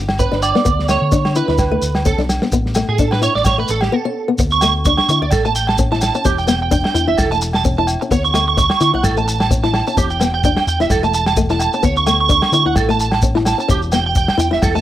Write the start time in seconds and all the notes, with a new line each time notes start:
Already playing: G1
0.09 snare, low agogo
0.19 C#4 B4, kick, shekere
0.32 G1 D4, snare
0.42 D5, low agogo, shekere
0.55 B3, snare
0.65 D2 B3, kick, shekere
0.79 snare
0.88 A3 C#5, snare, low agogo, shekere
1.02 D3
1.12 D4, kick, shekere
1.25 snare, low agogo
1.35 E4 B4, shekere
1.48 D2 E4, snare
1.58 kick, snare, low agogo, shekere
1.71 A3
1.82 D2, shekere
1.95 snare, low agogo
2.05 C#4 A4, kick, shekere
2.18 B1 D4, snare
2.29 snare, low agogo, shekere
2.42 B3, snare
2.52 A1 B3, kick, shekere
2.66 snare
2.75 A3, snare, low agogo, shekere
2.88 A2 G#4
2.99 D4 A4, kick, shekere
3.11 B4, snare, low agogo
3.22 E4 C#5, shekere
3.35 A1 D5, snare
3.44 C#5, kick, snare, low agogo, shekere
3.58 A3 B4
3.68 A1 A4, shekere
3.81 G4, snare, low agogo
3.92 B3 A4
4.05 C#4
4.28 B3
4.38 D2 B3, muted clean electric guitar stroke, kick, shekere
4.51 C#6, shekere
4.61 A3 C#6, snare, low agogo, shekere
4.85 D4 C#6, kick, snare, shekere
4.97 C#6, snare, low agogo
5.09 D3 E4 C#6, shekere
5.21 D2 D5, muted steel-string acoustic guitar stroke
5.31 A1 A4, kick, snare, low agogo, shekere
5.45 A3 A5, shekere
5.55 G5, shekere
5.67 A5, snare, low agogo
5.78 C#4, kick, shekere
5.92 E4 A5, snare
6.01 A5, snare, low agogo, shekere
6.14 C#4 A5, shekere
6.25 E1 C#4 G4, kick, shekere
6.38 G5, shekere
6.47 B3 G5, snare, low agogo, shekere
6.62 G5
6.71 D4 G5, kick, shekere
6.84 G5, snare, low agogo
6.94 E2 E4 G5, shekere
7.08 E1 E4 E5
7.18 E1 A4, kick, snare, low agogo, shekere
7.31 A3 A5, shekere
7.41 muted clean electric guitar stroke, shekere
7.53 A5, snare, low agogo
7.65 C#4, kick, shekere
7.78 E4 A5
7.87 low agogo, shekere
8.01 C#4, muted clean electric guitar stroke, shekere
8.11 D2 B3 C#5, kick, shekere
8.24 C#6, shekere
8.34 A3 C#6, snare, low agogo, shekere
8.48 C#6
8.57 C#6, muted steel-string acoustic guitar stroke, kick, snare, shekere
8.70 C#6, snare, low agogo
8.81 D3 E4 C#6, shekere
8.94 B1 E4 F#5
9.03 A1 A4, kick, snare, low agogo, shekere
9.17 A3 A5, shekere
9.28 A5, shekere
9.40 A5, snare, low agogo
9.51 C#4, kick, shekere
9.64 E4 A5, snare
9.74 A5, snare, low agogo
9.87 C#4 A5, shekere
9.97 E1 C#4 G4, kick, shekere
10.10 G5, shekere
10.20 B3 G5, snare, low agogo, shekere
10.34 G5
10.44 D4 G5, kick, shekere
10.57 G5, snare, low agogo
10.67 E2 G5, shekere
10.79 E1 E4 E5, snare, shekere
10.90 E1 A4, kick, snare, low agogo, shekere
11.03 A3 A5, shekere
11.14 A5, shekere
11.26 A5, snare, low agogo, shekere
11.37 A3, kick, shekere
11.50 E4 A5, snare, shekere
11.59 A5, low agogo, shekere
11.73 C#4 A5, shekere
11.83 D2 B3 C#5, kick, shekere
11.96 C#6, shekere
12.07 A3 C#6, snare, low agogo, shekere
12.20 C#6
12.29 D4 C#6, kick, shekere
12.42 C#6, snare, low agogo
12.52 D3 E4 C#6, shekere
12.65 D2 E4 F#5
12.76 A1 A4, kick, snare, low agogo, shekere
12.89 A3 A5, shekere
13.00 A5, shekere
13.11 A5, snare, low agogo
13.22 C#4, kick, shekere
13.35 E4, muted clean electric guitar stroke, snare
13.45 A5, snare, low agogo, shekere
13.58 C#4 A5, shekere
13.68 E1 C#4 G4, kick, shekere
13.82 shekere
13.92 B3 G5, snare, low agogo, shekere
14.06 G5
14.15 G5, kick, shekere
14.28 G5, snare, low agogo
14.38 E2 E4 G5, shekere
14.51 E1 E4 E5, snare
14.62 E1 A4, kick, snare, low agogo, shekere
14.75 A3 A5, shekere